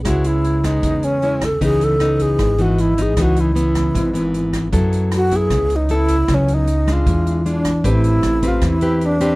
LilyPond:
<<
  \new Staff \with { instrumentName = "Alto flute" } { \time 4/4 \key cis \minor \tempo 4 = 154 fis'8 e'4 dis'4 cis'4 a'8 | gis'8 a'4 gis'4 fis'8 e'8 gis'8 | fis'8 e'2. r8 | r4 fis'8 gis'4 dis'8 e'4 |
cis'8 dis'4 eis'4. d'4 | \key a \minor e'4. f'8 e'4 d'4 | }
  \new Staff \with { instrumentName = "Nylon-string guitar" } { \time 4/4 \key cis \minor << { <gis b e'>4. <gis b>4. <gis b e'>8 r8 | <e b dis'>4 <e b dis'>4. <e b dis'>4 <e b dis'>8 | <e b dis'>4 <e b>4. <e b>4. | <b e' a'>4. <b e'>4. <b e' a'>8 r8 |
<fis b e'>4 r8 <gis d'>4. <gis d' f'>8 r8 | \key a \minor <c' g' b'>4. <c' g' b'>4 <c' g' b'>4 <c' g' b'>8 | } \\ { cis2 cis2 | cis2 gis,2 | cis2 gis,2 | fis2 cis2 |
cis2 e2 | a2 e2 | } >> }
  \new Staff \with { instrumentName = "Upright bass" } { \clef bass \time 4/4 \key cis \minor cis,2 e,2 | cis,2 gis,,2 | cis,2 gis,,2 | fis,2 cis,2 |
cis,2 e,2 | \key a \minor a,,4 a,,4 e,2 | }
  \new DrumStaff \with { instrumentName = "Drums" } \drummode { \time 4/4 <hh bd ss>8 hh8 hh8 <hh bd ss>8 <hh bd>8 hh8 hh8 <hh bd ss>8 | <hh bd>8 hh8 <hh ss>8 <hh bd>8 <hh bd ss>8 hh8 hh8 <hh bd>8 | <hh bd ss>8 hh8 hh8 <hh bd ss>8 <hh bd>8 hh8 hh8 <hh bd ss>8 | <hh bd>8 hh8 <hh ss>8 <hh bd>8 <hh bd ss>8 hh8 hh8 <hh bd>8 |
<hh bd ss>8 hh8 hh8 <hh bd ss>8 <hh bd>8 hh8 hh8 <hh bd ss>8 | <hh bd>8 hh8 <hh ss>8 <hh bd>8 <hh bd ss>8 hh8 hh8 hh8 | }
>>